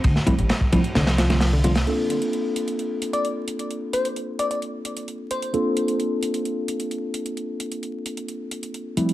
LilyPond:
<<
  \new Staff \with { instrumentName = "FM electric piano" } { \time 4/4 \key bes \major \tempo 4 = 131 r1 | r2 r8. d''16 r4 | r8 c''16 r8. d''16 d''16 r4. c''8~ | c''4 r2. |
r1 | }
  \new Staff \with { instrumentName = "Tine electric piano" } { \time 4/4 \key bes \major r8 <f g a c' e'>16 r8. <f g a c' e'>16 r4 <f g a c' f'>16 r8 <f g a c' f'>16 r16 | <bes c' d' f' a'>1~ | <bes c' d' f' a'>1 | <bes c' d' f' a'>1~ |
<bes c' d' f' a'>2.~ <bes c' d' f' a'>8 <f g a c' e'>8 | }
  \new Staff \with { instrumentName = "Reed electric piano" } { \clef bass \time 4/4 \key bes \major r8. g8. f16 r16 d16 f16 f16 d16 f16 d16 d16 r16 | r1 | r1 | r1 |
r1 | }
  \new Staff \with { instrumentName = "Upright bass" } { \clef bass \time 4/4 \key bes \major d,16 r8 a,,16 r4 c,2 | r1 | r1 | r1 |
r1 | }
  \new DrumStaff \with { instrumentName = "Drums" } \drummode { \time 4/4 <hh bd cymr>16 sn16 <hh bd cymr>16 hh16 <hh cymr sn>16 bd16 <hh bd cymr>16 hh16 <hh cymr sn>16 <cymr sn>16 <hh cymr sn>16 <hh cymr sn>16 <hh hho sn>16 cymr16 <hh cymr>16 <hh hho sn>16 | hh8 hh16 hh16 hh8 hh16 hh16 hh8 hh16 hh16 hh8 hh16 hh16 | hh8 hh16 hh16 hh8 hh16 hh16 hh8 hh16 hh16 hh8 hh16 hh16 | hh8 hh16 hh16 hh8 hh16 hh16 hh8 hh16 hh16 hh8 hh16 hh16 |
hh8 hh16 hh16 hh8 hh16 hh16 hh8 hh16 hh16 hh8 hh16 hh16 | }
>>